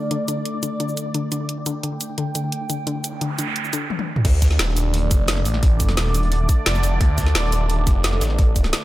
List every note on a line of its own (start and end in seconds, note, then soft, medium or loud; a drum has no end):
0.00 3.86 D3 medium
0.00 3.86 A3 medium
0.00 3.90 A3 medium
0.00 3.86 D4 medium
0.00 3.90 A4 medium
0.00 1.48 D5 medium
0.00 3.90 D5 medium
0.00 1.84 D6 medium
0.11 0.17 D3 medium
0.11 closed hi-hat medium
0.28 0.44 D3 medium
0.28 closed hi-hat medium
0.28 cabasa medium
0.45 closed hi-hat medium
0.63 0.69 D3 medium
0.63 closed hi-hat medium
0.63 cabasa medium
0.80 0.96 D3 medium
0.80 closed hi-hat medium
0.89 cabasa soft
0.97 closed hi-hat medium
0.97 cabasa medium
1.14 1.21 D3 medium
1.14 closed hi-hat medium
1.32 1.48 D3 medium
1.32 closed hi-hat medium
1.32 cabasa medium
1.49 3.90 G5 medium
1.49 closed hi-hat medium
1.66 1.73 D3 medium
1.66 closed hi-hat loud
1.66 cabasa medium
1.82 1.99 D3 medium
1.82 3.92 G5 medium
1.82 closed hi-hat medium
2.01 closed hi-hat medium
2.01 cabasa medium
2.18 2.24 D3 medium
2.18 closed hi-hat medium
2.35 2.51 D3 medium
2.35 closed hi-hat loud
2.35 cabasa medium
2.52 closed hi-hat medium
2.70 2.76 D3 medium
2.70 closed hi-hat medium
2.70 cabasa medium
2.87 3.03 D3 medium
2.87 closed hi-hat medium
2.87 noise sweep medium
3.04 closed hi-hat loud
3.04 cabasa medium
3.21 3.28 D3 medium
3.21 closed hi-hat medium
3.39 3.55 D3 medium
3.39 closed hi-hat medium
3.39 cabasa medium
3.56 closed hi-hat medium
3.64 cabasa soft
3.73 3.84 D3 medium
3.73 closed hi-hat loud
3.73 cabasa medium
3.90 high tom medium
3.99 high tom medium
4.16 mid tom medium
4.25 4.58 D2 loud
4.25 8.84 D3 medium
4.25 8.84 A3 medium
4.25 8.84 D4 medium
4.25 8.84 D5 medium
4.25 kick loud
4.25 closed hi-hat medium
4.25 crash loud
4.42 kick medium
4.42 snare medium
4.42 closed hi-hat loud
4.42 closed hi-hat medium
4.42 cabasa medium
4.51 snare soft
4.59 5.10 D#1 loud
4.59 snare loud
4.59 closed hi-hat medium
4.69 snare soft
4.76 closed hi-hat medium
4.76 open hi-hat medium
4.76 cabasa medium
4.94 closed hi-hat medium
4.94 closed hi-hat loud
5.11 5.44 F1 loud
5.11 kick loud
5.11 closed hi-hat medium
5.11 closed hi-hat loud
5.11 cabasa medium
5.28 snare loud
5.28 closed hi-hat loud
5.28 closed hi-hat medium
5.37 snare soft
5.45 5.96 A1 loud
5.45 closed hi-hat medium
5.45 open hi-hat medium
5.45 cabasa medium
5.54 snare soft
5.63 kick loud
5.63 closed hi-hat medium
5.80 kick medium
5.80 closed hi-hat medium
5.80 closed hi-hat loud
5.80 cabasa medium
5.88 snare soft
5.88 closed hi-hat soft
5.97 6.48 D#1 medium
5.97 snare loud
5.97 closed hi-hat loud
5.97 closed hi-hat medium
6.06 snare medium
6.14 closed hi-hat medium
6.14 open hi-hat medium
6.14 cabasa medium
6.23 closed hi-hat soft
6.32 closed hi-hat medium
6.49 kick loud
6.49 closed hi-hat loud
6.49 closed hi-hat medium
6.49 cabasa medium
6.66 6.99 F1 medium
6.66 snare loud
6.66 closed hi-hat medium
6.74 snare medium
6.74 snare soft
6.74 cabasa soft
6.83 closed hi-hat medium
6.83 open hi-hat medium
6.83 cabasa medium
7.00 7.34 D2 medium
7.00 kick loud
7.00 closed hi-hat medium
7.18 kick medium
7.18 snare medium
7.18 closed hi-hat medium
7.18 cabasa medium
7.27 snare soft
7.35 7.85 D#1 loud
7.35 snare loud
7.35 closed hi-hat medium
7.43 snare soft
7.52 closed hi-hat medium
7.52 open hi-hat medium
7.52 cabasa medium
7.70 closed hi-hat medium
7.87 8.20 F1 loud
7.87 kick loud
7.87 closed hi-hat medium
7.87 cabasa medium
8.03 snare loud
8.03 closed hi-hat medium
8.13 snare soft
8.21 8.72 A1 loud
8.21 snare loud
8.21 closed hi-hat medium
8.21 open hi-hat medium
8.21 cabasa medium
8.30 snare soft
8.38 kick loud
8.38 closed hi-hat medium
8.56 kick medium
8.56 closed hi-hat medium
8.56 cabasa medium
8.64 snare soft
8.64 closed hi-hat soft
8.73 snare loud
8.73 closed hi-hat medium